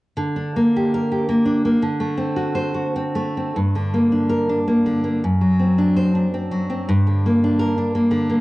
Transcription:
0.17 D3
0.36 D4
0.56 A#3
0.77 G4
0.94 A#4
1.12 G4
1.29 A#3
1.45 D4
1.65 A#3
1.82 D3
2.00 A3
2.17 C4
2.36 F#4
2.55 C5
2.74 F#4
2.96 C4
3.15 A3
3.37 C4
3.56 G2
3.75 D3
3.94 A#3
4.12 D4
4.29 A#4
4.49 D4
4.67 A#3
4.86 D3
5.04 A#3
5.24 F#2
5.41 F#3
5.60 C4
5.78 D4
5.96 C5
6.15 D4
6.34 C4
6.51 F#3
6.70 C4
6.89 G2
7.07 D3
7.26 A#3
7.44 D4
7.59 A#4
7.78 D4
7.95 A#3
8.11 D3
8.30 A#3

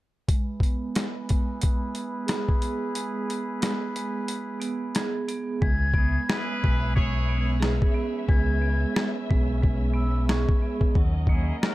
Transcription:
0.28 G#3 E4 G#4 B4, kick, closed hi-hat
0.60 B3, kick, closed hi-hat
0.95 G#3, cross-stick, snare, closed hi-hat
1.29 G#3, kick, closed hi-hat
1.61 G#3, kick, closed hi-hat
1.95 B3, closed hi-hat
2.26 G#4, cross-stick, snare, closed hi-hat
2.49 kick
2.61 B3, closed hi-hat
2.95 G#3, closed hi-hat
3.28 B3, closed hi-hat
3.61 G#3, cross-stick, snare, closed hi-hat
3.96 G#3, closed hi-hat
4.28 G#3, closed hi-hat
4.60 B3, closed hi-hat
4.95 G#4, cross-stick, snare, closed hi-hat
5.28 B3, closed hi-hat
5.61 C#2 G#3 C#4 B4 E5 G#6, kick
5.94 B3 C#4 E4 G#4, kick
6.28 G#3 E4 G#4 B4, cross-stick, snare
6.63 B1 G#3, kick
6.94 G#3 E4 G#4 C#5, kick
7.29 B3
7.60 G#4, cross-stick, snare
7.82 kick
7.94 B3
8.29 C#2 G#3 G#6, kick
8.61 B3
8.94 G#3, cross-stick, snare
9.30 B1 G#3, kick
9.62 G#3, kick
9.93 B3 E6
10.28 G#4 C#6, cross-stick, snare
10.49 kick
10.62 B3
10.81 kick
10.95 D#2 F#3 A#4 D#5, kick
11.27 A#3 C#4 E4 G#4, kick
11.62 F#3 D#4 F#4 A#4, cross-stick, snare

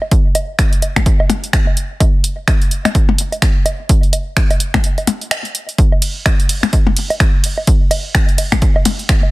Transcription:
0.02 low woodblock
0.11 kick, closed hi-hat
0.35 closed hi-hat, low woodblock
0.59 finger snap, kick, closed hi-hat
0.73 closed hi-hat
0.82 closed hi-hat, low woodblock
0.96 finger snap, kick, closed hi-hat, percussion blips
1.06 kick, closed hi-hat
1.20 low woodblock
1.30 closed hi-hat, percussion blips
1.44 closed hi-hat
1.53 finger snap, kick, closed hi-hat
1.67 low woodblock
1.77 closed hi-hat
2.00 kick, closed hi-hat, low woodblock
2.24 closed hi-hat
2.48 finger snap, kick, closed hi-hat, low woodblock
2.62 closed hi-hat
2.71 closed hi-hat
2.85 finger snap, closed hi-hat, percussion blips, low woodblock
2.95 kick, closed hi-hat
3.09 percussion blips
3.18 closed hi-hat
3.32 closed hi-hat, low woodblock
3.42 finger snap, kick, closed hi-hat
3.66 closed hi-hat, low woodblock
3.89 kick, closed hi-hat
4.03 closed hi-hat
4.13 closed hi-hat, low woodblock
4.37 finger snap, kick, closed hi-hat
4.51 closed hi-hat, low woodblock
4.60 closed hi-hat
4.74 finger snap, kick, closed hi-hat, percussion blips
4.84 closed hi-hat
4.98 closed hi-hat, low woodblock
5.07 closed hi-hat, percussion blips
5.21 closed hi-hat
5.31 finger snap, closed hi-hat, low woodblock
5.45 closed hi-hat
5.55 closed hi-hat
5.69 closed hi-hat
5.78 kick, closed hi-hat
5.92 low woodblock
6.02 closed hi-hat, ride
6.26 finger snap, kick, closed hi-hat, low woodblock
6.40 closed hi-hat
6.49 closed hi-hat, ride
6.63 finger snap, closed hi-hat, percussion blips
6.73 kick, closed hi-hat, low woodblock
6.87 percussion blips
6.97 closed hi-hat, ride
7.10 closed hi-hat, low woodblock
7.20 finger snap, kick, closed hi-hat
7.44 closed hi-hat, ride
7.58 low woodblock
7.67 kick, closed hi-hat
7.91 closed hi-hat, ride, low woodblock
8.15 finger snap, kick, closed hi-hat
8.29 closed hi-hat
8.38 closed hi-hat, ride, low woodblock
8.52 finger snap, kick, closed hi-hat, percussion blips
8.62 kick, closed hi-hat
8.76 low woodblock
8.85 closed hi-hat, ride, percussion blips
8.99 closed hi-hat
9.09 finger snap, kick, closed hi-hat
9.23 low woodblock

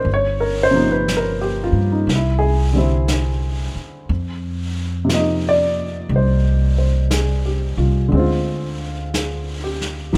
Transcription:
0.05 G1, brush sweep
0.14 C#5
0.40 A#4
0.63 C5
0.71 C3 F3 A#3
0.76 D#4
0.91 B4
1.08 brush sweep, snare, hi-hat pedal
1.17 A#4
1.41 G4
1.64 F4
1.72 G2
1.92 D#4
2.07 C2, brush sweep, snare
2.15 E4
2.39 G#4
2.73 D3 G3 C4
2.78 E4
3.08 brush sweep, snare, hi-hat pedal
3.75 muted upright bass stroke
4.08 F2, brush sweep
5.05 C3 F3
5.09 A#3, brush sweep, snare, hi-hat pedal
5.14 D#4 D#5
5.49 D5
6.09 C2, brush sweep
6.16 C5
6.78 C5
7.11 G#4, brush sweep, snare, hi-hat pedal
7.46 G4
7.77 C2 F4
8.08 D2 D3 G#3, brush sweep
8.15 C4
8.19 F4
9.14 G#4, brush sweep, snare, hi-hat pedal
9.64 G4
9.81 snare
10.13 G1 A#2 F3 D#4 G4

